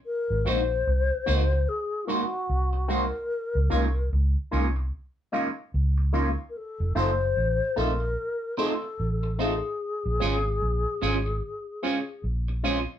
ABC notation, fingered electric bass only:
X:1
M:4/4
L:1/16
Q:"Swing 16ths" 1/4=74
K:Db
V:1 name="Fingered electric bass" clef=bass
z A,,, B,,,2 C,, z D,,2 z4 C,,3 z | z D,, z2 D,, z C,,2 z4 D,,3 z | z F,,, G,,,2 =A,,, z B,,,2 z4 A,,,3 z | z B,,, A,,,2 B,,, z A,,,2 z4 B,,,3 z |]